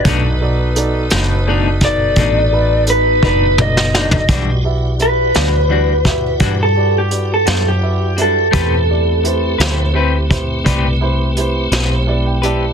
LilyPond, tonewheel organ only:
\new Staff \with { instrumentName = "Tonewheel organ" } { \time 12/8 \key e \minor \tempo 4. = 57 <b dis' a' b'>1. | <gis f' g' dis''>8 <e' g' d'' fis''>1~ <e' g' d'' fis''>4. | <a c' g' b'>1. | }